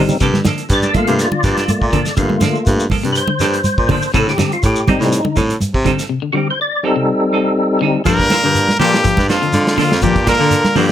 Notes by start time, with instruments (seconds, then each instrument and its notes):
Already playing: clean electric guitar D3 G3 C4 D#4 A4, tonewheel organ G3 C4 D#4
0.00 low conga
0.09 low conga, shekere
0.20 baritone saxophone G2, clean electric guitar C3 F3 A#3 D4 A4, kick, closed hi-hat, shekere
0.33 clean electric guitar D3, snare, high conga
0.45 clean electric guitar D3 F3 A#3 D4 A4, snare, closed hi-hat, high conga, low conga, shekere
0.58 closed hi-hat, shekere
0.69 baritone saxophone G2, tonewheel organ D5, kick, closed hi-hat, shekere
0.83 clean electric guitar A#3 D4 A4, high conga, shekere
0.94 clean electric guitar F3 A#3 D4 A4, tonewheel organ A3 A#3 F4 E5, kick, closed hi-hat, high conga, low conga, shekere
0.98 tonewheel organ F5
1.07 baritone saxophone G2, clean electric guitar C3, closed hi-hat
1.19 tonewheel organ F4 D5, snare, closed hi-hat, shekere
1.32 clean electric guitar D3, high conga
1.43 baritone saxophone G2, clean electric guitar F3 A#3 D4 A4, kick, snare, closed hi-hat, shekere
1.57 clean electric guitar D4 A4, snare, closed hi-hat, shekere
1.68 tonewheel organ A3 A#3 F4, closed hi-hat, high conga, shekere
1.81 baritone saxophone A#2, kick
1.92 clean electric guitar D3 F3 A#3 D4 A4, kick, closed hi-hat, low conga, shekere
2.06 snare, closed hi-hat, shekere
2.17 baritone saxophone G2, clean electric guitar D3, tonewheel organ A3 A#3 F4, kick, closed hi-hat, low conga, shekere
2.30 clean electric guitar D3, high conga
2.41 clean electric guitar D3 F3 A#3 D4 A4, snare, closed hi-hat, high conga, shekere
2.55 shekere
2.66 baritone saxophone G2, kick, closed hi-hat, shekere
2.80 shekere
2.90 clean electric guitar F3 A#3 A4, muted clean electric guitar stroke, kick, open hi-hat, high conga, low conga, shekere
3.03 baritone saxophone G2, clean electric guitar C3, closed hi-hat
3.13 tonewheel organ B4, closed hi-hat, shekere
3.17 tonewheel organ C5
3.28 clean electric guitar D3, high conga
3.40 baritone saxophone G2, clean electric guitar F3 A#3 D4 A4, snare, closed hi-hat, shekere
3.52 closed hi-hat, shekere
3.64 closed hi-hat, high conga, shekere
3.78 baritone saxophone A#2, kick
3.89 clean electric guitar D3 F3 A#3 D4 A4, kick, open hi-hat, low conga, shekere
4.02 shekere
4.14 baritone saxophone A2, clean electric guitar C3 C4 D#4 A4, tonewheel organ A4, muted clean electric guitar stroke, kick, closed hi-hat, shekere
4.27 clean electric guitar D3, tonewheel organ G4, snare
4.38 clean electric guitar D3 G3 C4 D#4 A4, snare, closed hi-hat, high conga, shekere
4.52 tonewheel organ F4, closed hi-hat, shekere
4.63 baritone saxophone A2, tonewheel organ G4, kick, closed hi-hat, shekere
4.76 shekere
4.87 clean electric guitar G3 C4 D#4 A4, tonewheel organ G3 C4 D#4, kick, closed hi-hat, high conga, low conga, shekere
5.00 baritone saxophone A2, clean electric guitar C3, snare, closed hi-hat
5.12 closed hi-hat, shekere
5.25 clean electric guitar D3, high conga
5.36 baritone saxophone A2, clean electric guitar G3 C4 D#4 A4, kick, closed hi-hat, shekere
5.49 closed hi-hat, shekere
5.60 closed hi-hat, high conga, shekere
5.74 baritone saxophone C3, kick
5.85 clean electric guitar D3 G3 C4 D#4 A4, kick, closed hi-hat, low conga, shekere
5.99 snare, closed hi-hat, shekere
6.09 clean electric guitar C3
6.22 clean electric guitar D3
6.33 clean electric guitar D3 G3 C4 D#4, tonewheel organ F#4
6.37 tonewheel organ G4
6.50 tonewheel organ C5
6.61 tonewheel organ D5
6.83 tonewheel organ G3 C4 D#4 A4, clean electric guitar G3 C4 D#4 A4
6.96 clean electric guitar C3
7.33 clean electric guitar G3 C4 D#4 A4
7.81 clean electric guitar D3 G3 D#4 A4
8.05 baritone saxophone G2, trombone A#2, clean electric guitar F3 A#3 D4, tonewheel organ A#3 F4 A4, trumpet A#4, muted clean electric guitar stroke, kick, snare, crash, low conga, shekere
8.19 kick, snare, closed hi-hat
8.30 clean electric guitar F3 A#3 D4 A4, tonewheel organ A#3 F4 A4, snare, closed hi-hat, high conga, shekere
8.44 baritone saxophone G2, clean electric guitar D3
8.55 closed hi-hat, high conga, shekere
8.69 snare, high conga
8.79 trombone G2, baritone saxophone A#2, clean electric guitar F3 A#3 D4 A4, tonewheel organ A#3 F4 A4, trumpet G4, open hi-hat, low conga, shekere
8.94 snare, closed hi-hat
9.04 clean electric guitar F3, kick, snare, closed hi-hat, high conga, shekere
9.17 baritone saxophone G2, kick, snare, closed hi-hat, high conga
9.28 trombone F2, clean electric guitar F3 A#3 D4 A4, trumpet F4, snare, closed hi-hat, shekere
9.42 clean electric guitar D3, closed hi-hat
9.53 baritone saxophone D3, closed hi-hat, high conga, shekere
9.67 snare, closed hi-hat
9.78 trombone F2, clean electric guitar D3 F3 A#3 D4 A4, tonewheel organ A#3 F4 A4, trumpet F4, snare, open hi-hat, low conga, shekere
9.92 baritone saxophone F2, snare, high conga
10.02 trombone G2, baritone saxophone A#2, clean electric guitar F3, trumpet G4, kick, closed hi-hat, low conga, shekere
10.16 kick, closed hi-hat
10.27 trombone A#2, clean electric guitar F3 A#3 D4 A4, tonewheel organ A#3 F4 A4, trumpet A#4, kick, snare, closed hi-hat, high conga, shekere
10.40 clean electric guitar D3 A#3 D4 A4, baritone saxophone D3
10.51 closed hi-hat, high conga, shekere
10.64 snare, high conga
10.75 baritone saxophone G2, trombone G2, clean electric guitar F3 A#3 D4 A4, tonewheel organ A#3 F4 A4, trumpet G4, open hi-hat, low conga, shekere